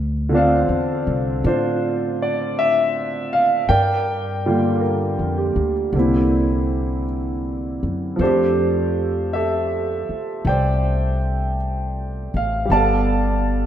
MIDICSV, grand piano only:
0, 0, Header, 1, 2, 480
1, 0, Start_track
1, 0, Tempo, 1125704
1, 1576, Time_signature, 4, 2, 24, 8
1, 5826, End_track
2, 0, Start_track
2, 0, Title_t, "Grand piano"
2, 0, Program_c, 0, 0
2, 0, Control_c, 0, 64, 127
2, 125, Note_on_c, 0, 50, 48
2, 134, Note_on_c, 0, 65, 40
2, 140, Note_on_c, 0, 60, 41
2, 147, Note_on_c, 0, 62, 52
2, 150, Note_on_c, 0, 72, 44
2, 154, Note_on_c, 0, 69, 40
2, 156, Note_on_c, 0, 77, 60
2, 610, Note_off_c, 0, 77, 0
2, 617, Note_off_c, 0, 65, 0
2, 618, Note_off_c, 0, 72, 0
2, 619, Note_off_c, 0, 62, 0
2, 624, Note_on_c, 0, 65, 45
2, 625, Note_on_c, 0, 62, 42
2, 625, Note_on_c, 0, 72, 56
2, 948, Note_on_c, 0, 74, 62
2, 956, Note_off_c, 0, 72, 0
2, 1088, Note_off_c, 0, 69, 0
2, 1089, Note_off_c, 0, 74, 0
2, 1103, Note_on_c, 0, 76, 73
2, 1420, Note_on_c, 0, 77, 76
2, 1434, Note_off_c, 0, 76, 0
2, 1562, Note_off_c, 0, 65, 0
2, 1563, Note_off_c, 0, 62, 0
2, 1569, Note_off_c, 0, 50, 0
2, 1572, Note_on_c, 0, 79, 79
2, 1577, Note_off_c, 0, 60, 0
2, 1578, Note_on_c, 0, 70, 49
2, 1579, Note_on_c, 0, 74, 50
2, 1580, Note_off_c, 0, 77, 0
2, 1581, Control_c, 0, 64, 0
2, 1665, Control_c, 0, 64, 127
2, 1902, Note_on_c, 0, 50, 39
2, 1902, Note_on_c, 0, 55, 37
2, 1906, Note_on_c, 0, 58, 40
2, 1908, Note_on_c, 0, 65, 44
2, 2046, Note_off_c, 0, 70, 0
2, 2052, Note_on_c, 0, 70, 33
2, 2293, Note_on_c, 0, 67, 34
2, 2439, Note_off_c, 0, 70, 0
2, 2524, Note_off_c, 0, 50, 0
2, 2530, Note_off_c, 0, 58, 0
2, 2530, Note_on_c, 0, 50, 42
2, 2535, Note_off_c, 0, 55, 0
2, 2537, Note_on_c, 0, 58, 38
2, 2538, Note_off_c, 0, 65, 0
2, 2540, Control_c, 0, 64, 0
2, 2544, Note_on_c, 0, 60, 40
2, 2552, Note_on_c, 0, 64, 43
2, 2608, Control_c, 0, 64, 127
2, 2637, Note_off_c, 0, 67, 0
2, 2996, Note_off_c, 0, 79, 0
2, 3000, Note_off_c, 0, 74, 0
2, 3480, Note_on_c, 0, 53, 45
2, 3494, Note_on_c, 0, 57, 39
2, 3495, Note_off_c, 0, 50, 0
2, 3498, Note_off_c, 0, 58, 0
2, 3499, Note_on_c, 0, 72, 62
2, 3502, Note_off_c, 0, 60, 0
2, 3504, Control_c, 0, 64, 0
2, 3504, Note_on_c, 0, 69, 43
2, 3506, Note_off_c, 0, 64, 0
2, 3508, Note_on_c, 0, 62, 38
2, 3508, Note_on_c, 0, 67, 48
2, 3519, Note_off_c, 0, 67, 0
2, 3525, Note_on_c, 0, 67, 47
2, 3585, Control_c, 0, 64, 127
2, 3980, Note_on_c, 0, 76, 56
2, 3981, Note_off_c, 0, 67, 0
2, 3982, Note_off_c, 0, 69, 0
2, 3988, Note_on_c, 0, 67, 40
2, 3989, Note_on_c, 0, 69, 38
2, 3994, Note_off_c, 0, 72, 0
2, 4443, Note_off_c, 0, 76, 0
2, 4465, Note_on_c, 0, 79, 63
2, 4473, Note_on_c, 0, 72, 42
2, 4473, Note_on_c, 0, 74, 44
2, 4927, Note_off_c, 0, 67, 0
2, 4928, Note_off_c, 0, 69, 0
2, 5250, Note_off_c, 0, 79, 0
2, 5273, Note_on_c, 0, 77, 70
2, 5396, Note_on_c, 0, 55, 43
2, 5408, Note_off_c, 0, 72, 0
2, 5409, Note_off_c, 0, 74, 0
2, 5410, Note_off_c, 0, 53, 0
2, 5410, Note_on_c, 0, 59, 38
2, 5417, Note_off_c, 0, 57, 0
2, 5422, Note_on_c, 0, 81, 73
2, 5424, Note_off_c, 0, 62, 0
2, 5424, Control_c, 0, 64, 0
2, 5425, Note_off_c, 0, 77, 0
2, 5427, Note_on_c, 0, 67, 34
2, 5428, Note_on_c, 0, 74, 58
2, 5431, Note_on_c, 0, 77, 57
2, 5444, Note_on_c, 0, 69, 40
2, 5506, Control_c, 0, 64, 127
2, 5826, Note_off_c, 0, 55, 0
2, 5826, Note_off_c, 0, 59, 0
2, 5826, Note_off_c, 0, 67, 0
2, 5826, Note_off_c, 0, 69, 0
2, 5826, Note_off_c, 0, 74, 0
2, 5826, Note_off_c, 0, 77, 0
2, 5826, Note_off_c, 0, 81, 0
2, 5826, End_track
0, 0, End_of_file